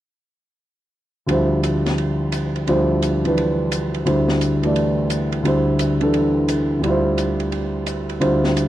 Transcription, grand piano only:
0, 0, Header, 1, 2, 480
1, 0, Start_track
1, 0, Tempo, 346220
1, 1787, Time_signature, 4, 2, 24, 8
1, 12034, End_track
2, 0, Start_track
2, 0, Title_t, "Grand piano"
2, 0, Program_c, 0, 0
2, 1755, Note_on_c, 0, 38, 41
2, 1762, Note_on_c, 0, 50, 39
2, 1781, Note_on_c, 0, 53, 38
2, 1800, Note_on_c, 0, 55, 37
2, 1810, Note_on_c, 0, 64, 38
2, 1821, Note_on_c, 0, 72, 47
2, 3686, Note_off_c, 0, 38, 0
2, 3688, Note_off_c, 0, 50, 0
2, 3698, Note_off_c, 0, 55, 0
2, 3699, Note_off_c, 0, 53, 0
2, 3707, Note_off_c, 0, 64, 0
2, 3707, Note_on_c, 0, 38, 44
2, 3708, Note_on_c, 0, 50, 39
2, 3713, Note_off_c, 0, 72, 0
2, 3718, Note_on_c, 0, 55, 40
2, 3720, Note_on_c, 0, 53, 38
2, 3728, Note_on_c, 0, 64, 38
2, 3733, Note_on_c, 0, 72, 44
2, 4480, Note_off_c, 0, 50, 0
2, 4501, Note_on_c, 0, 50, 35
2, 4516, Note_on_c, 0, 52, 32
2, 4530, Note_on_c, 0, 62, 32
2, 4545, Note_on_c, 0, 71, 39
2, 5597, Note_off_c, 0, 38, 0
2, 5601, Note_off_c, 0, 50, 0
2, 5613, Note_off_c, 0, 55, 0
2, 5618, Note_off_c, 0, 72, 0
2, 5618, Note_on_c, 0, 38, 41
2, 5619, Note_off_c, 0, 64, 0
2, 5622, Note_on_c, 0, 50, 37
2, 5632, Note_off_c, 0, 52, 0
2, 5634, Note_off_c, 0, 53, 0
2, 5634, Note_on_c, 0, 55, 38
2, 5639, Note_off_c, 0, 62, 0
2, 5639, Note_on_c, 0, 64, 39
2, 5639, Note_on_c, 0, 72, 45
2, 5647, Note_off_c, 0, 71, 0
2, 6418, Note_on_c, 0, 52, 35
2, 6432, Note_on_c, 0, 57, 32
2, 6448, Note_on_c, 0, 67, 30
2, 6465, Note_on_c, 0, 74, 39
2, 7508, Note_off_c, 0, 38, 0
2, 7523, Note_off_c, 0, 50, 0
2, 7528, Note_on_c, 0, 38, 44
2, 7542, Note_off_c, 0, 55, 0
2, 7543, Note_off_c, 0, 52, 0
2, 7544, Note_on_c, 0, 50, 38
2, 7549, Note_off_c, 0, 64, 0
2, 7550, Note_off_c, 0, 57, 0
2, 7553, Note_off_c, 0, 72, 0
2, 7558, Note_off_c, 0, 67, 0
2, 7562, Note_on_c, 0, 55, 38
2, 7566, Note_off_c, 0, 74, 0
2, 7570, Note_on_c, 0, 64, 40
2, 7594, Note_on_c, 0, 72, 47
2, 8302, Note_off_c, 0, 50, 0
2, 8323, Note_on_c, 0, 50, 34
2, 8339, Note_on_c, 0, 52, 34
2, 8351, Note_on_c, 0, 62, 32
2, 8361, Note_on_c, 0, 69, 37
2, 9387, Note_off_c, 0, 38, 0
2, 9408, Note_on_c, 0, 38, 38
2, 9418, Note_off_c, 0, 50, 0
2, 9438, Note_on_c, 0, 50, 38
2, 9451, Note_off_c, 0, 55, 0
2, 9468, Note_off_c, 0, 52, 0
2, 9471, Note_on_c, 0, 55, 39
2, 9474, Note_off_c, 0, 62, 0
2, 9478, Note_off_c, 0, 64, 0
2, 9479, Note_off_c, 0, 69, 0
2, 9490, Note_off_c, 0, 72, 0
2, 9507, Note_on_c, 0, 64, 39
2, 9533, Note_on_c, 0, 65, 34
2, 9569, Note_on_c, 0, 72, 45
2, 11348, Note_off_c, 0, 50, 0
2, 11352, Note_off_c, 0, 38, 0
2, 11358, Note_off_c, 0, 55, 0
2, 11358, Note_off_c, 0, 64, 0
2, 11363, Note_off_c, 0, 65, 0
2, 11367, Note_off_c, 0, 72, 0
2, 11369, Note_on_c, 0, 50, 38
2, 11373, Note_on_c, 0, 38, 39
2, 11379, Note_on_c, 0, 55, 41
2, 11379, Note_on_c, 0, 64, 38
2, 11383, Note_on_c, 0, 65, 40
2, 11388, Note_on_c, 0, 72, 49
2, 12034, Note_off_c, 0, 38, 0
2, 12034, Note_off_c, 0, 50, 0
2, 12034, Note_off_c, 0, 55, 0
2, 12034, Note_off_c, 0, 64, 0
2, 12034, Note_off_c, 0, 65, 0
2, 12034, Note_off_c, 0, 72, 0
2, 12034, End_track
0, 0, End_of_file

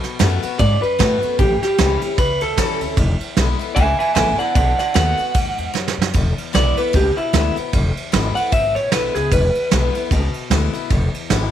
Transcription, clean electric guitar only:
0, 0, Header, 1, 2, 480
1, 0, Start_track
1, 0, Tempo, 396563
1, 1681, Time_signature, 4, 2, 24, 8
1, 13932, End_track
2, 0, Start_track
2, 0, Title_t, "Clean electric guitar"
2, 0, Program_c, 0, 27
2, 720, Note_on_c, 0, 74, 104
2, 988, Note_off_c, 0, 74, 0
2, 993, Note_on_c, 0, 71, 97
2, 1656, Note_off_c, 0, 71, 0
2, 1684, Note_on_c, 0, 67, 106
2, 1954, Note_off_c, 0, 67, 0
2, 1969, Note_on_c, 0, 67, 99
2, 2625, Note_off_c, 0, 67, 0
2, 2645, Note_on_c, 0, 71, 97
2, 2914, Note_off_c, 0, 71, 0
2, 2927, Note_on_c, 0, 69, 111
2, 3583, Note_off_c, 0, 69, 0
2, 4536, Note_on_c, 0, 76, 99
2, 4547, Note_on_c, 0, 80, 110
2, 4813, Note_off_c, 0, 76, 0
2, 4818, Note_off_c, 0, 80, 0
2, 4827, Note_on_c, 0, 76, 90
2, 4832, Note_on_c, 0, 80, 99
2, 5000, Note_off_c, 0, 76, 0
2, 5010, Note_off_c, 0, 80, 0
2, 5015, Note_on_c, 0, 76, 86
2, 5025, Note_on_c, 0, 80, 97
2, 5287, Note_off_c, 0, 76, 0
2, 5303, Note_off_c, 0, 80, 0
2, 5305, Note_on_c, 0, 74, 86
2, 5315, Note_on_c, 0, 78, 100
2, 5492, Note_off_c, 0, 74, 0
2, 5497, Note_off_c, 0, 78, 0
2, 5506, Note_on_c, 0, 74, 95
2, 5511, Note_on_c, 0, 78, 106
2, 5773, Note_off_c, 0, 74, 0
2, 5787, Note_off_c, 0, 78, 0
2, 5792, Note_on_c, 0, 74, 78
2, 5803, Note_on_c, 0, 78, 97
2, 5979, Note_off_c, 0, 78, 0
2, 5982, Note_off_c, 0, 74, 0
2, 5994, Note_on_c, 0, 78, 123
2, 6928, Note_off_c, 0, 78, 0
2, 7924, Note_on_c, 0, 74, 80
2, 8193, Note_off_c, 0, 74, 0
2, 8199, Note_on_c, 0, 71, 73
2, 8394, Note_off_c, 0, 71, 0
2, 8414, Note_on_c, 0, 67, 77
2, 8679, Note_off_c, 0, 67, 0
2, 8680, Note_on_c, 0, 64, 94
2, 9146, Note_off_c, 0, 64, 0
2, 10110, Note_on_c, 0, 78, 103
2, 10309, Note_off_c, 0, 78, 0
2, 10316, Note_on_c, 0, 76, 91
2, 10590, Note_off_c, 0, 76, 0
2, 10593, Note_on_c, 0, 73, 92
2, 10790, Note_off_c, 0, 73, 0
2, 10807, Note_on_c, 0, 71, 79
2, 11070, Note_on_c, 0, 68, 94
2, 11075, Note_off_c, 0, 71, 0
2, 11269, Note_off_c, 0, 68, 0
2, 11286, Note_on_c, 0, 71, 94
2, 12214, Note_off_c, 0, 71, 0
2, 13932, End_track
0, 0, End_of_file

